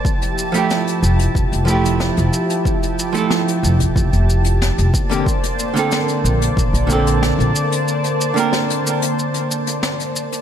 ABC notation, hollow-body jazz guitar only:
X:1
M:4/4
L:1/16
Q:1/4=92
K:F
V:1 name="Hollow-body jazz guitar"
z3 [F,A,EG]6- [F,A,EG] [F,A,EG]6- | [F,A,EG]3 [F,A,EA]8- [F,A,EA]3 z [D,B,CG] | z3 [D,B,CA]6- [D,B,CA] [D,B,CA]6- | [D,B,CA]3 [D,B,CB]12 z |]